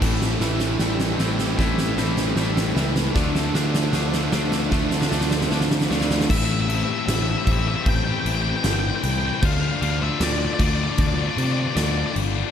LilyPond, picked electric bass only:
\new Staff \with { instrumentName = "Picked electric bass" } { \clef bass \time 4/4 \key a \minor \tempo 4 = 77 a,,8 a,,8 a,,8 a,,8 a,,8 a,,8 a,,8 cis,8 | d,8 d,8 d,8 d,8 d,8 d,8 d,8 d,8 | a,,4 a,,8 a,,8 a,,8 a,,8 g,,8 c,8 | d,8 d,8 d,8 d,8 d,8 c8 d,8 g,,8 | }